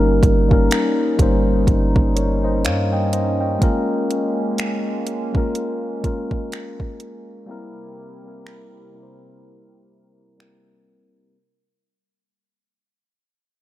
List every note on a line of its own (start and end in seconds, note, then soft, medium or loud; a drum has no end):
0.00 0.21 G1 loud
0.00 0.20 G3 loud
0.00 3.58 G3 medium
0.00 0.21 A#3 medium
0.00 0.21 C#4 medium
0.00 7.45 C#4 medium
0.00 0.22 D#4 loud
0.00 3.58 D#4 medium
0.00 0.23 A#4 loud
0.23 0.69 G1 loud
0.23 kick medium
0.23 closed hi-hat medium
0.48 0.96 G3 medium
0.48 0.97 A#3 medium
0.48 0.97 C#4 medium
0.48 0.98 D#4 medium
0.48 kick medium
0.53 0.98 A#4 medium
0.71 finger snap loud
0.71 closed hi-hat medium
1.17 1.66 G1 loud
1.17 2.46 G3 medium
1.17 2.47 A#3 medium
1.17 2.48 C#4 medium
1.17 2.48 D#4 medium
1.17 kick medium
1.17 closed hi-hat medium
1.22 2.18 C5 medium
1.67 2.67 G1 loud
1.67 kick medium
1.67 closed hi-hat medium
1.96 kick medium
2.16 2.43 A#4 soft
2.16 2.43 C#5 medium
2.16 closed hi-hat medium
2.44 2.64 C5 medium
2.44 2.64 D#5 medium
2.65 3.58 G2 loud
2.65 2.92 C#5 medium
2.65 2.91 F5 medium
2.65 finger snap loud
2.65 closed hi-hat medium
2.93 3.12 D#5 medium
2.93 3.12 G5 medium
3.13 3.40 C5 medium
3.13 3.40 D#5 medium
3.13 closed hi-hat medium
3.41 3.87 D#5 medium
3.41 3.87 G5 medium
3.59 4.71 G#3 loud
3.59 7.45 G#3 medium
3.59 4.72 A#3 loud
3.59 7.45 A#3 medium
3.59 4.72 C#4 medium
3.59 4.73 F4 medium
3.59 kick loud
3.59 closed hi-hat medium
3.63 4.73 A#4 loud
4.11 closed hi-hat medium
4.58 finger snap loud
4.58 closed hi-hat medium
5.07 closed hi-hat medium
5.33 5.80 G#3 medium
5.33 5.81 A#3 medium
5.33 5.81 C#4 medium
5.33 5.82 F4 medium
5.33 kick medium
5.37 5.82 A#4 medium
5.55 closed hi-hat medium
6.02 6.97 G#3 medium
6.02 6.97 A#3 medium
6.02 6.98 C#4 medium
6.02 6.98 F4 medium
6.02 kick medium
6.02 closed hi-hat medium
6.06 6.99 A#4 medium
6.31 kick medium
6.52 finger snap loud
6.52 closed hi-hat medium
6.80 kick medium
7.00 closed hi-hat medium
7.46 11.32 C3 medium
7.46 7.94 G3 loud
7.46 7.95 A#3 medium
7.46 7.96 C4 medium
7.46 11.32 C4 medium
7.46 11.32 E4 medium
7.46 7.96 E4 medium
7.46 11.32 G4 medium
7.46 11.32 A#4 medium
7.51 7.97 A#4 loud
8.23 8.71 G3 medium
8.23 8.71 A#3 medium
8.23 8.72 C4 medium
8.23 8.72 E4 medium
8.28 8.73 A#4 medium
8.47 finger snap loud
8.92 10.21 G3 medium
8.92 10.21 A#3 medium
8.92 10.22 C4 medium
8.92 10.22 E4 medium
8.96 9.03 A#4 medium
9.03 10.26 C5 medium
10.37 11.18 G3 medium
10.37 11.19 A#3 medium
10.37 11.20 C4 medium
10.37 11.20 E4 medium
10.37 finger snap loud
10.41 11.21 A#4 medium